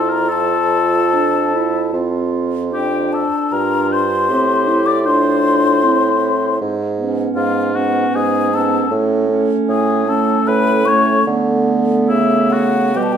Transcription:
Already playing: F2 E4 F4 A4 A5
0.10 A#4 A#5
0.30 F4 A4 A5
1.13 D4
1.54 E4
1.93 F2 C4 F4
2.73 D4 G4 G5
3.13 A4 A5
3.52 G2 F4 A#4 A#5
3.91 C5 C6
4.29 A2 C4 G4
4.68 E4
4.86 D5 D6
5.04 D4 F4 C5 C6
5.84 C4 E4
6.61 G#2
6.99 B3 C#4
7.34 G#2 F4 F5
7.75 B3 C#4 F#4 F#5
8.14 G#2 G#4 G#5
8.53 B3 C#4 A4 A5
8.91 A2 A3 C#4
9.29 A3 C#4
9.68 A2 G#4 G#5
10.08 A3 C#4 A4 A5
10.47 A2 B4 B5
10.85 A3 C#4 C#5 C#6
11.27 D3 A3 B3
12.07 C#3 E4 E5
12.50 F#4 F#5
12.95 B2 G3 B3 G4 G5
13.03 A5
13.13 G5

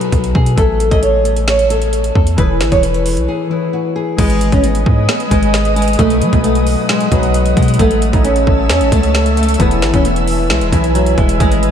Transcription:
Already playing: B2 F#3 D#4 F#4 G#4 B4
0.01 closed hi-hat
0.12 B1, kick, closed hi-hat
0.24 closed hi-hat
0.35 B2 G#4, kick
0.46 closed hi-hat
0.56 A1 A3 A4 C#5 E5, kick, closed hi-hat
0.80 closed hi-hat
0.90 A1 A3 A4 C#5 D#5 E5, kick, closed hi-hat
1.03 C#5, closed hi-hat
1.24 A3 A4 C#5 E5, closed hi-hat
1.36 closed hi-hat
1.48 C#5, snare, closed hi-hat
1.59 closed hi-hat
1.69 A3 A4 C#5 E5, closed hi-hat
1.82 closed hi-hat
1.93 closed hi-hat
2.04 closed hi-hat
2.15 E2 A4, kick
2.27 closed hi-hat
2.36 E1 E3 E4 G#4 B4, kick, closed hi-hat
2.61 G#1, snare, closed hi-hat
2.70 E1 E3 E4 G#4 B4 C#5, kick, closed hi-hat
2.83 B4, closed hi-hat
2.94 closed hi-hat
3.06 open hi-hat
3.17 B1, closed hi-hat
3.28 G#4
3.49 E3 E4 G#4 B4
3.73 F#4
3.96 G#4
4.17 G#1 G#3 G#4 B4 D#5 G#5 D#6, kick, closed hi-hat, crash
4.30 closed hi-hat
4.41 closed hi-hat
4.51 G#1 G#3 C#4 G#4 B4 D#5, kick, closed hi-hat
4.64 B3, closed hi-hat
4.75 closed hi-hat
4.84 G#2 G#3 G#4 B4 D#5, kick
5.09 B3, snare, closed hi-hat
5.20 closed hi-hat
5.29 G#1 G#3 G#4 B4 D#5, kick, closed hi-hat
5.43 closed hi-hat
5.54 snare, closed hi-hat
5.65 closed hi-hat
5.76 G#3, closed hi-hat
5.82 closed hi-hat
5.88 closed hi-hat
5.93 closed hi-hat
5.97 B1 B2 F#3 A3 D#4 B4 D#5 F#5, kick, closed hi-hat
6.10 closed hi-hat
6.22 F#3, closed hi-hat
6.31 B1 B2 F#3 B3 D#4 B4, kick, closed hi-hat
6.44 A3, closed hi-hat
6.55 closed hi-hat
6.67 open hi-hat
6.89 G#3, snare, closed hi-hat
7.00 closed hi-hat
7.10 B1 B2 F#3 D#4 B4, kick, closed hi-hat
7.23 closed hi-hat
7.34 closed hi-hat
7.46 closed hi-hat
7.57 B2 G#3, kick, closed hi-hat
7.62 closed hi-hat
7.68 closed hi-hat
7.74 A3, closed hi-hat
7.79 A1 A3 A4 C#5 E5 A5 E6, kick, closed hi-hat
7.91 closed hi-hat
8.02 closed hi-hat
8.12 A1 A3 D#4 A4 C#5 E5, kick, closed hi-hat
8.24 C#4, closed hi-hat
8.36 closed hi-hat
8.45 A1 A3 A4 C#5 E5, kick
8.70 E2 C#4, snare, closed hi-hat
8.81 A1, closed hi-hat
8.90 C#2 A3 A4 C#5 E5, kick, closed hi-hat
9.03 closed hi-hat
9.15 snare, closed hi-hat
9.26 closed hi-hat
9.37 A3, closed hi-hat
9.43 closed hi-hat
9.49 closed hi-hat
9.54 E3, closed hi-hat
9.59 E1 B3 E4 G#4 B4 G#5, kick, closed hi-hat
9.71 closed hi-hat
9.82 G#1, snare, closed hi-hat
9.92 E1 E3 C#4 E4 G#4 B4, kick, closed hi-hat
10.05 B3, closed hi-hat
10.16 closed hi-hat
10.28 open hi-hat
10.50 B1 G#3, snare, closed hi-hat
10.61 E1, closed hi-hat
10.71 B1 E3 E4 G#4 B4, kick, closed hi-hat
10.84 closed hi-hat
10.95 F#3, closed hi-hat
11.06 closed hi-hat
11.18 E1 G#3, kick, closed hi-hat
11.29 closed hi-hat
11.39 G#1 G#3 G#4 B4 D#5 D#6, kick, closed hi-hat
11.52 closed hi-hat
11.63 closed hi-hat

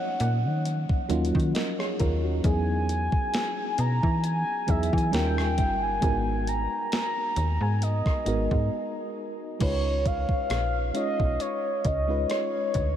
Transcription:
Already playing: F3 F#3 A#3 C#4 D#4 F#5
0.20 A#2, closed hi-hat
0.45 D#3
0.65 closed hi-hat
0.89 kick
1.09 D#2 F#3 A#3 C#4 D#4 F4, closed hi-hat
1.25 closed hi-hat
1.35 D#3, kick
1.40 closed hi-hat
1.55 A#4 D#5, snare, closed hi-hat
1.79 G#4 C#5, cross-stick
1.99 D#2 F4 A#4, kick, closed hi-hat
2.24 C#4 F#4
2.43 E2 F#3 B3 D#4 E4 G#4 G#5, kick, closed hi-hat
2.89 closed hi-hat
3.12 kick
3.34 snare, closed hi-hat
3.78 B2 A#5, closed hi-hat
4.03 E3, kick
4.24 G#5, closed hi-hat
4.67 E2 F#3 B3 D#4 E4 G#4 E5, kick, closed hi-hat
4.83 closed hi-hat
4.93 E3 G#5, kick
4.98 closed hi-hat
5.11 D#2 G3 C#4 D#4 F4 A#4 G5, snare, closed hi-hat
5.38 cross-stick
5.58 G1, kick, closed hi-hat
5.83 G#5
6.01 G#1 G#3 B3 D#4 F#4 A#4, kick, closed hi-hat
6.47 A#5, closed hi-hat
6.92 A#5, snare, closed hi-hat
7.36 D#2, closed hi-hat
7.61 G#2 G#5
7.82 D#5, closed hi-hat
8.06 kick, cross-stick
8.25 G#1 G#3 B3 D#4 F#4 A#4, closed hi-hat
8.51 G#2, kick
9.59 C#2 G#3 C#4 D#4 F4 B4 C#5, kick, closed hi-hat, crash
10.06 F5, kick, closed hi-hat
10.29 A#1, kick
10.50 A#1, cross-stick, closed hi-hat
10.94 G#3 C#4 D#4 F4 C#5 D#5, closed hi-hat
11.20 B1, kick
11.40 C#5, closed hi-hat
11.85 C#2 D#5, kick, closed hi-hat
12.07 G#3 C#4 D#4 F4 B4
12.30 C#5, cross-stick, closed hi-hat
12.74 D2, kick, closed hi-hat

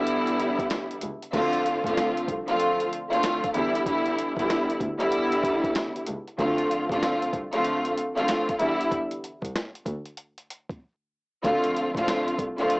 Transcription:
Already playing: D3 E3 G3 B3 E4
0.07 closed hi-hat
0.27 closed hi-hat
0.40 closed hi-hat
0.59 kick, closed hi-hat
0.70 snare, closed hi-hat
0.91 closed hi-hat
1.01 C#2, closed hi-hat
1.23 closed hi-hat
1.33 D2 D3 F3 A3 C4 F4, kick, closed hi-hat, crash
1.53 closed hi-hat
1.66 closed hi-hat
1.84 A1 D3 F3 A3 C4 F4, kick, closed hi-hat
1.97 snare, closed hi-hat
2.17 closed hi-hat
2.28 C2, kick, closed hi-hat
2.47 D3 F3 A3 C4 F4, closed hi-hat
2.59 closed hi-hat
2.80 closed hi-hat
2.93 closed hi-hat
3.10 D3 F3 A3 C4 F4, closed hi-hat
3.23 snare, closed hi-hat
3.44 kick, closed hi-hat
3.54 E2 D3 E3 G3 B3 E4, closed hi-hat
3.75 closed hi-hat
3.86 D3 E3 G3 B3 E4, kick, closed hi-hat
4.06 closed hi-hat
4.18 closed hi-hat
4.37 C2 D3 E3 G3 B3 E4, kick, closed hi-hat
4.50 snare, closed hi-hat
4.70 closed hi-hat
4.81 D2, kick, closed hi-hat
4.99 D3 E3 G3 B3 E4, closed hi-hat
5.12 closed hi-hat
5.32 closed hi-hat
5.43 kick, closed hi-hat
5.64 kick, closed hi-hat
5.75 snare, closed hi-hat
5.96 closed hi-hat
6.07 C#2, closed hi-hat
6.28 closed hi-hat
6.38 D2 D3 F3 A3 C4 F4, kick, closed hi-hat
6.58 closed hi-hat
6.71 closed hi-hat
6.89 A1 D3 F3 A3 C4 F4, kick, closed hi-hat
7.03 snare, closed hi-hat
7.22 closed hi-hat
7.33 C2, kick, closed hi-hat
7.53 D3 F3 A3 C4 F4, closed hi-hat
7.64 closed hi-hat
7.85 closed hi-hat
7.97 closed hi-hat
8.16 D3 F3 A3 C4 F4, closed hi-hat
8.28 snare, closed hi-hat
8.49 kick, closed hi-hat
8.59 E2 D3 E3 G3 B3 E4, closed hi-hat
8.81 closed hi-hat
8.91 kick, closed hi-hat
9.11 closed hi-hat
9.24 closed hi-hat
9.42 C2, kick, closed hi-hat
9.55 snare, closed hi-hat
9.75 closed hi-hat
9.86 D2, kick, closed hi-hat
10.06 closed hi-hat
10.17 closed hi-hat
10.38 closed hi-hat
10.50 closed hi-hat
10.70 kick, closed hi-hat
11.43 D2 D3 F3 A3 C4 F4, kick, closed hi-hat
11.64 closed hi-hat
11.76 closed hi-hat
11.95 A1 D3 F3 A3 C4 F4, kick, closed hi-hat
12.08 snare, closed hi-hat
12.28 closed hi-hat
12.38 C2, kick, closed hi-hat
12.58 D3 F3 A3 C4 F4, closed hi-hat
12.70 closed hi-hat

